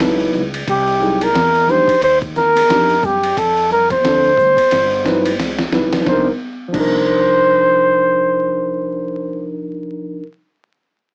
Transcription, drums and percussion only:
0.00 snare, hi-hat pedal, ride, maracas
0.20 high conga, maracas
0.35 low conga, maracas
0.54 ride, maracas
0.68 kick, ride, maracas
0.87 maracas
1.02 low conga, maracas
1.21 ride, high conga, maracas
1.35 snare, hi-hat pedal, ride, maracas
1.55 maracas
1.69 low conga, maracas
1.88 kick, ride, maracas
2.02 ride, maracas
2.22 kick, maracas
2.36 snare, maracas
2.56 ride, high conga, maracas
2.70 snare, hi-hat pedal, ride, maracas
2.89 high conga, maracas
3.03 kick, low conga, maracas
3.23 ride, maracas
3.37 kick, ride, maracas
3.57 maracas
3.71 low conga, maracas
3.90 kick, snare, ride, high conga, maracas
4.04 snare, hi-hat pedal, ride, maracas
4.25 maracas
4.37 kick, high conga, low conga, maracas
4.57 kick, ride, maracas
4.71 snare, ride, high conga, maracas
4.92 maracas
5.06 snare, maracas
5.26 ride, high conga, maracas
5.40 snare, hi-hat pedal, ride, maracas
5.59 snare, high conga, maracas
5.72 snare, low conga, maracas
5.92 snare, ride, maracas
6.06 kick, snare, high conga
6.74 kick, crash, high conga

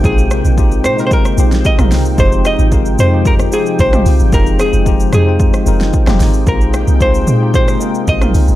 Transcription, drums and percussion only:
0.04 kick, shaker
0.18 shaker
0.31 cross-stick, shaker
0.45 shaker
0.58 kick, shaker
0.72 shaker
0.84 cross-stick, shaker
0.98 shaker
1.11 kick, shaker
1.25 cross-stick, shaker
1.38 shaker
1.52 snare, shaker
1.65 kick, shaker
1.79 cross-stick, mid tom, shaker
1.92 snare, open hi-hat, shaker
2.05 shaker
2.18 kick, shaker
2.32 shaker
2.45 cross-stick, shaker
2.59 shaker
2.72 kick, shaker
2.86 shaker
2.99 shaker
3.25 kick, shaker
3.39 cross-stick, shaker
3.52 shaker
3.66 shaker
3.79 kick, shaker
3.93 cross-stick, mid tom, shaker
4.06 open hi-hat, shaker
4.20 shaker
4.33 kick, shaker
4.47 shaker
4.59 cross-stick, shaker
4.73 shaker
4.86 kick, shaker
5.00 shaker
5.13 cross-stick, shaker
5.40 kick, shaker
5.54 cross-stick, shaker
5.66 shaker
5.80 snare, shaker
5.93 kick, shaker
6.07 cross-stick, snare, mid tom, shaker
6.20 snare, open hi-hat, shaker
6.34 shaker
6.47 kick, shaker
6.61 shaker
6.74 cross-stick, shaker
6.88 shaker
7.00 kick, shaker
7.14 shaker
7.27 shaker
7.54 kick, shaker
7.68 cross-stick, shaker
7.81 shaker
7.95 shaker
8.08 kick, shaker
8.21 cross-stick, mid tom, shaker
8.34 open hi-hat, shaker
8.48 shaker

